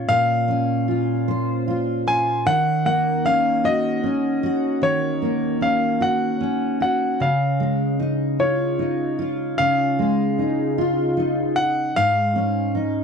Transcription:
0.00 0.48 C#4 medium
0.00 0.87 F4 medium
0.00 0.12 C#5 medium
0.08 2.46 A#2 medium
0.08 2.13 F5 loud
0.48 3.24 C#4 medium
0.88 1.66 F4 medium
1.28 2.06 C5 medium
1.68 2.54 F4 medium
2.07 2.54 C5 medium
2.07 2.48 G#5 loud
2.46 4.81 D#3 medium
2.46 2.85 F#5 loud
2.85 5.21 A#3 medium
2.85 3.26 F#5 loud
3.25 4.03 C#4 medium
3.25 3.66 F5 loud
3.64 4.42 F#4 medium
3.64 4.79 D#5 medium
4.03 5.61 C#4 medium
4.43 5.99 F#4 medium
4.82 7.23 D#3 medium
4.82 5.58 C#5 medium
5.22 7.29 A#3 medium
5.61 6.40 C#4 soft
5.61 5.99 F5 medium
6.00 6.79 F#4 medium
6.00 6.81 F#5 medium
6.40 7.99 C#4 medium
6.80 7.28 F#4 medium
6.80 7.18 F#5 medium
7.20 9.58 C#3 medium
7.20 7.97 F5 medium
7.60 9.98 G#3 medium
7.99 8.79 D#4 medium
8.39 9.17 F4 medium
8.39 9.55 C#5 medium
8.79 10.38 D#4 medium
9.19 10.77 F4 medium
9.58 11.96 C#3 medium
9.58 11.62 F5 loud
9.99 13.04 G#3 medium
10.39 11.17 D#4 medium
10.78 11.57 F4 medium
11.17 12.35 D#4 medium
11.56 11.97 F#5 loud
11.96 13.04 G#2 medium
11.96 12.71 F5 loud
12.36 13.04 C#4 medium
12.75 13.04 D#4 medium

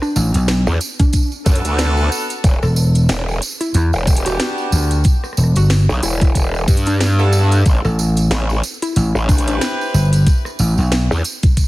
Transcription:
0.02 0.11 D4 medium
0.02 cross-stick soft
0.02 tambourine soft
0.16 0.32 A1 medium
0.16 0.28 D4 medium
0.16 tambourine loud
0.34 0.64 B1 loud
0.34 closed hi-hat medium
0.34 tambourine soft
0.48 snare loud
0.48 closed hi-hat medium
0.48 tambourine medium
0.67 0.79 E2 medium
0.67 tambourine soft
0.81 closed hi-hat soft
0.81 tambourine loud
1.00 1.90 D4 medium
1.00 kick loud
1.00 closed hi-hat medium
1.00 tambourine soft
1.13 kick medium
1.13 closed hi-hat medium
1.13 tambourine medium
1.32 tambourine soft
1.46 1.62 F#2 loud
1.46 2.42 B3 medium
1.46 2.42 D4 medium
1.46 2.42 F#4 medium
1.46 2.42 A4 loud
1.46 kick loud
1.46 closed hi-hat soft
1.46 tambourine loud
1.55 closed hi-hat medium
1.65 2.09 D2 loud
1.65 closed hi-hat medium
1.65 tambourine soft
1.78 snare loud
1.78 closed hi-hat medium
1.78 tambourine medium
1.97 tambourine soft
2.12 tambourine loud
2.30 closed hi-hat medium
2.30 tambourine soft
2.44 2.60 E1 loud
2.44 kick loud
2.44 closed hi-hat medium
2.44 tambourine medium
2.63 3.07 E1 loud
2.63 2.76 A4 medium
2.63 cross-stick soft
2.63 tambourine soft
2.76 tambourine loud
2.95 closed hi-hat medium
2.95 tambourine soft
3.09 3.40 E1 loud
3.09 snare loud
3.09 closed hi-hat medium
3.09 tambourine medium
3.28 tambourine soft
3.42 closed hi-hat soft
3.42 tambourine loud
3.61 3.69 E4 medium
3.61 closed hi-hat medium
3.61 tambourine soft
3.74 3.90 E2 loud
3.74 3.87 E4 medium
3.74 closed hi-hat medium
3.74 tambourine medium
3.93 4.38 E1 medium
3.93 tambourine soft
4.07 5.03 B3 medium
4.07 5.03 D4 medium
4.07 5.03 F#4 medium
4.07 5.03 G4 loud
4.07 kick loud
4.07 closed hi-hat soft
4.07 tambourine loud
4.16 closed hi-hat medium
4.26 4.35 F#4 medium
4.26 closed hi-hat medium
4.26 tambourine soft
4.40 4.52 F#4 medium
4.40 snare loud
4.40 closed hi-hat medium
4.40 tambourine medium
4.58 tambourine soft
4.72 5.03 D2 loud
4.72 tambourine loud
4.91 closed hi-hat medium
4.91 tambourine soft
5.04 kick loud
5.04 closed hi-hat medium
5.04 tambourine medium
5.24 cross-stick soft
5.24 tambourine soft
5.33 cross-stick soft
5.37 5.53 E1 medium
5.37 tambourine loud
5.44 cross-stick soft
5.55 5.86 G1 loud
5.55 5.70 F#4 medium
5.55 closed hi-hat medium
5.55 tambourine soft
5.70 snare loud
5.70 closed hi-hat medium
5.70 tambourine medium
5.89 6.01 B1 loud
5.89 tambourine soft
6.03 6.66 E1 medium
6.03 6.15 E4 medium
6.03 closed hi-hat soft
6.03 tambourine loud
6.21 6.31 E4 medium
6.21 kick loud
6.21 closed hi-hat medium
6.21 tambourine soft
6.35 kick medium
6.35 closed hi-hat medium
6.35 tambourine medium
6.54 tambourine soft
6.68 7.63 G2 medium
6.68 kick loud
6.68 closed hi-hat soft
6.68 tambourine loud
6.77 closed hi-hat medium
6.86 7.52 D4 medium
6.86 closed hi-hat medium
6.86 tambourine soft
7.01 snare loud
7.01 closed hi-hat medium
7.01 tambourine medium
7.19 7.64 B3 medium
7.19 7.64 D4 medium
7.19 7.64 E4 medium
7.19 7.64 A4 medium
7.19 tambourine soft
7.32 tambourine loud
7.51 closed hi-hat medium
7.51 tambourine soft
7.66 7.82 A1 loud
7.66 kick loud
7.66 closed hi-hat medium
7.66 tambourine medium
7.85 8.29 A1 medium
7.85 7.98 A4 medium
7.85 cross-stick soft
7.85 tambourine soft
7.99 tambourine medium
8.17 closed hi-hat medium
8.17 tambourine soft
8.31 8.61 A1 medium
8.31 snare loud
8.31 closed hi-hat medium
8.31 tambourine soft
8.50 tambourine soft
8.63 closed hi-hat soft
8.63 tambourine medium
8.82 8.91 E4 medium
8.82 closed hi-hat medium
8.82 tambourine soft
8.96 9.12 A1 medium
8.96 9.08 E4 medium
8.96 closed hi-hat medium
8.96 tambourine medium
9.15 9.59 A1 medium
9.15 tambourine soft
9.28 10.25 C4 medium
9.28 9.41 D4 medium
9.28 10.25 E4 medium
9.28 10.25 G4 medium
9.28 10.25 B4 loud
9.28 kick loud
9.28 closed hi-hat soft
9.28 tambourine medium
9.38 closed hi-hat medium
9.47 9.56 D4 medium
9.47 closed hi-hat medium
9.47 tambourine soft
9.61 snare loud
9.61 closed hi-hat medium
9.61 tambourine medium
9.81 tambourine soft
9.94 10.24 G1 loud
9.94 tambourine medium
10.13 closed hi-hat medium
10.13 tambourine soft
10.27 kick loud
10.27 closed hi-hat medium
10.27 tambourine soft
10.45 cross-stick soft
10.45 tambourine soft
10.59 10.75 A1 medium
10.59 tambourine loud
10.78 11.08 B1 loud
10.78 tambourine soft
10.92 snare loud
10.92 closed hi-hat medium
10.92 tambourine soft
11.11 11.22 E2 loud
11.11 tambourine soft
11.24 closed hi-hat soft
11.24 tambourine loud
11.43 kick loud
11.43 closed hi-hat medium
11.43 tambourine soft
11.57 kick medium
11.57 closed hi-hat medium
11.57 tambourine medium

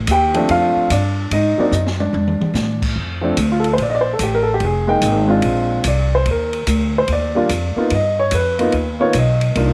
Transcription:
0.07 0.47 D#2 medium
0.07 0.48 G4 medium
0.07 kick soft
0.07 hi-hat pedal medium
0.07 ride medium
0.12 0.48 G5 loud
0.34 0.87 F3 medium
0.34 0.87 A3 medium
0.34 0.88 C4 medium
0.34 0.88 D4 medium
0.34 ride medium
0.49 0.74 F2 medium
0.49 0.88 F4 medium
0.49 0.92 F5 loud
0.49 kick soft
0.49 ride medium
0.76 muted upright bass stroke soft
0.90 1.30 G2 medium
0.90 1.30 D4 medium
0.90 1.29 D5 medium
0.90 kick soft
0.90 hi-hat pedal medium
0.90 ride medium
1.31 1.56 G#2 medium
1.31 1.58 D#4 medium
1.31 1.60 D#5 loud
1.31 kick soft
1.31 ride medium
1.58 1.71 F#3 medium
1.58 1.71 A#3 medium
1.58 1.72 C4 medium
1.58 1.72 D#4 medium
1.58 1.72 D5 medium
1.58 muted upright bass stroke soft
1.62 1.73 D4 medium
1.71 2.12 F#2 medium
1.71 1.79 D#5 medium
1.71 hi-hat pedal medium
1.75 1.81 D#4 medium
1.87 snare medium
2.00 2.79 D4 medium
2.00 2.78 D5 medium
2.00 high tom medium
2.13 2.39 F2 medium
2.13 high tom medium
2.28 mid tom medium
2.41 muted upright bass stroke soft
2.41 mid tom loud
2.54 2.94 A2 medium
2.54 snare medium
2.54 hi-hat pedal medium
2.82 kick medium
2.82 crash medium
2.96 3.36 F2 medium
3.21 3.35 F3 medium
3.21 3.35 A3 medium
3.21 3.36 C4 medium
3.21 3.36 D4 medium
3.37 3.77 D2 medium
3.37 kick soft
3.37 hi-hat pedal medium
3.37 ride medium
3.52 3.65 F4 medium
3.60 3.69 A4 medium
3.64 ride soft
3.73 3.79 C5 medium
3.78 4.18 A#1 medium
3.78 kick soft
3.78 ride medium
3.82 3.89 D5 medium
3.90 3.93 D#5 medium
3.95 4.07 D5 medium
4.01 4.10 C5 medium
4.13 4.20 A4 medium
4.19 4.59 A1 medium
4.19 kick soft
4.19 hi-hat pedal medium
4.19 ride medium
4.23 4.35 G4 medium
4.35 4.47 A#4 medium
4.43 4.52 A4 medium
4.54 4.61 G4 medium
4.60 5.01 F1 medium
4.60 kick soft
4.60 ride medium
4.65 5.41 G#4 medium
4.87 5.26 G#3 medium
4.87 5.27 A#3 medium
4.87 5.27 D#4 medium
4.87 5.27 G5 medium
5.02 5.42 G#1 loud
5.02 kick soft
5.02 hi-hat pedal medium
5.02 ride medium
5.28 5.81 G#3 medium
5.28 5.81 C4 medium
5.28 5.82 D4 medium
5.28 5.82 F4 medium
5.42 5.83 A#1 medium
5.42 kick soft
5.42 ride medium
5.84 6.25 C2 medium
5.84 6.13 D5 medium
5.84 kick soft
5.84 hi-hat pedal medium
5.84 ride medium
6.15 6.27 C5 medium
6.26 6.66 D#2 medium
6.26 kick soft
6.26 ride medium
6.31 6.93 A#4 medium
6.53 ride soft
6.67 7.07 D2 loud
6.67 kick soft
6.67 hi-hat pedal medium
6.67 ride medium
6.98 7.10 C5 medium
7.08 7.48 D#2 medium
7.08 kick soft
7.08 ride medium
7.13 7.75 D5 medium
7.35 7.48 G3 medium
7.35 7.48 A#3 medium
7.35 7.49 D4 medium
7.35 7.49 F4 medium
7.49 7.75 F2 medium
7.49 kick soft
7.49 hi-hat pedal medium
7.49 ride medium
7.76 7.89 A#3 medium
7.76 7.90 B3 medium
7.76 7.90 D#4 medium
7.76 7.90 F4 medium
7.76 muted upright bass stroke soft
7.90 8.31 G2 medium
7.90 kick soft
7.90 ride medium
7.95 8.20 D#5 medium
8.19 8.32 C#5 medium
8.31 8.72 F2 medium
8.31 8.98 B4 medium
8.31 kick soft
8.31 hi-hat pedal medium
8.31 ride medium
8.59 8.72 A#3 medium
8.59 8.72 B3 medium
8.59 8.72 D#4 medium
8.59 8.73 F4 medium
8.59 ride soft
8.72 9.13 D#2 medium
8.72 kick soft
8.72 ride medium
9.00 9.13 A#3 medium
9.00 9.13 B3 medium
9.00 9.14 D#4 medium
9.00 9.14 F4 medium
9.00 9.14 C#5 medium
9.13 9.55 B1 medium
9.13 kick soft
9.13 hi-hat pedal medium
9.13 ride medium
9.18 9.73 D#5 medium
9.41 ride medium
9.55 9.73 C2 medium
9.55 9.73 A#3 medium
9.55 9.73 D4 medium
9.55 9.73 D#4 medium
9.55 9.73 F4 medium
9.55 kick soft
9.55 ride medium

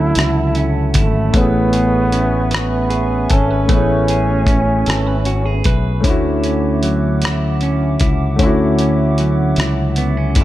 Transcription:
0.00 0.12 D2 medium
0.00 1.34 D3 medium
0.00 1.33 F#3 medium
0.00 1.29 A3 soft
0.00 0.56 C#4 medium
0.00 1.28 C#4 soft
0.00 0.15 E4 medium
0.00 0.70 E4 loud
0.00 1.30 E4 medium
0.00 1.36 F4 soft
0.00 1.35 F#4 soft
0.00 1.30 A4 medium
0.00 1.33 A4 medium
0.00 1.30 E5 medium
0.00 1.30 F#5 medium
0.00 1.30 A5 medium
0.15 0.97 C#2 medium
0.15 0.94 E4 medium
0.15 cross-stick medium
0.15 closed hi-hat medium
0.55 2.12 C#4 medium
0.55 closed hi-hat soft
0.94 1.30 G#1 medium
0.94 1.73 E4 medium
0.94 kick medium
0.94 closed hi-hat medium
1.00 1.39 A3 medium
1.31 3.26 A1 medium
1.31 3.63 A3 medium
1.31 3.69 A3 medium
1.31 3.65 B3 medium
1.31 2.50 B4 medium
1.31 6.00 B4 medium
1.31 6.00 E5 medium
1.31 6.00 G#5 medium
1.31 6.00 C#6 medium
1.31 kick medium
1.31 closed hi-hat medium
1.36 2.53 B3 loud
1.36 3.66 C#4 medium
1.36 3.67 E4 soft
1.40 3.68 G#4 medium
1.73 2.89 G#4 medium
1.73 closed hi-hat soft
2.12 4.48 C#4 medium
2.12 closed hi-hat medium
2.51 3.30 B4 medium
2.51 cross-stick medium
2.51 closed hi-hat medium
2.57 3.35 B3 medium
2.90 4.08 G#4 medium
2.90 closed hi-hat soft
3.30 3.66 G#1 medium
3.30 3.51 A4 medium
3.30 kick medium
3.30 closed hi-hat medium
3.34 3.71 C#4 medium
3.51 3.68 B4 soft
3.66 4.83 A1 medium
3.66 5.99 A3 soft
3.66 6.83 A3 medium
3.66 6.00 B3 soft
3.66 4.87 B4 medium
3.66 kick loud
3.66 closed hi-hat medium
3.71 6.01 C#4 medium
3.71 5.63 C#4 medium
3.71 6.02 E4 soft
3.75 6.03 G#4 medium
4.08 5.26 G#4 medium
4.08 closed hi-hat medium
4.47 6.44 C#4 medium
4.47 kick medium
4.47 closed hi-hat medium
4.86 5.61 G#1 medium
4.86 5.07 A4 medium
4.86 cross-stick medium
4.86 closed hi-hat medium
5.07 5.65 B4 medium
5.25 5.46 F#4 medium
5.25 closed hi-hat soft
5.46 6.04 G#4 soft
5.64 6.01 B1 medium
5.64 6.12 B4 medium
5.64 kick medium
5.64 closed hi-hat medium
6.00 8.34 A3 medium
6.00 8.35 C#4 medium
6.00 10.44 C#4 medium
6.00 10.44 E5 medium
6.00 10.44 F#5 medium
6.00 10.44 D6 medium
6.00 kick loud
6.04 7.96 D2 medium
6.04 8.40 D3 medium
6.04 7.23 E4 medium
6.04 8.37 E4 medium
6.04 closed hi-hat medium
6.10 8.38 F#4 medium
6.44 7.62 C#4 medium
6.44 closed hi-hat soft
6.83 9.18 F#3 soft
6.83 closed hi-hat soft
7.22 8.02 E4 medium
7.22 cross-stick medium
7.22 closed hi-hat medium
7.61 8.80 C#4 soft
7.61 closed hi-hat soft
8.00 8.36 C#2 medium
8.00 8.41 E4 medium
8.00 kick medium
8.00 closed hi-hat medium
8.36 9.53 D2 medium
8.36 10.44 A3 medium
8.36 10.44 C#4 medium
8.36 kick medium
8.36 closed hi-hat medium
8.41 10.44 D3 medium
8.41 9.58 E4 medium
8.41 10.44 E4 medium
8.46 10.44 F#4 medium
8.79 9.97 C#4 medium
8.79 closed hi-hat medium
9.18 10.44 F#3 medium
9.18 closed hi-hat medium
9.56 10.38 C#2 medium
9.56 10.36 E4 medium
9.56 cross-stick medium
9.56 closed hi-hat medium
9.96 10.17 B3 medium
9.96 closed hi-hat medium
10.17 10.44 C#4 soft
10.35 10.44 G#1 medium
10.35 10.44 A3 medium
10.35 10.44 E4 medium
10.35 kick medium
10.35 closed hi-hat medium

